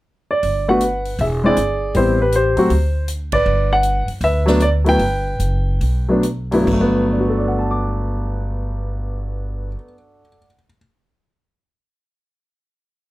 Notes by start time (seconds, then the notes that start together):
0.31 D5
0.43 G1, open hi-hat
0.68 A3 B3 D4 F#4 B4 F#5
0.81 closed hi-hat
1.05 open hi-hat
1.19 E1 G#4 E5, open hi-hat
1.44 G#3 C4 D4 E4 G#4 D5
1.57 G1, closed hi-hat
1.94 A1 G3 B3 C4 E4 G4 C5, open hi-hat
2.22 B4
2.32 G4 C5, closed hi-hat
2.57 A2 F#3 A3 C4 F#4, open hi-hat
2.70 D2, open hi-hat
3.08 closed hi-hat
3.32 G#1 B4 D5, kick, ride
3.46 G1
3.73 F#5
3.83 closed hi-hat
4.08 muted upright bass stroke, open hi-hat
4.21 D2 B4 E5, open hi-hat
4.46 F#3 A3 B3 D4, snare
4.60 D5, closed hi-hat
4.84 F#3 A3 B3 E4, open hi-hat
4.89 B4 G5
4.99 G1, open hi-hat
5.40 F#1, closed hi-hat
5.81 B1, open hi-hat
6.09 F#3 A3 B3 D4
6.23 closed hi-hat
6.51 G2 F#3 A3 B3 E4, open hi-hat
6.56 G2
6.65 G1 F#3, kick, splash
6.73 A3
6.81 B3
7.13 D4
7.20 F#4
7.29 A4
7.38 D5
7.48 F#5
7.59 A5
7.71 D6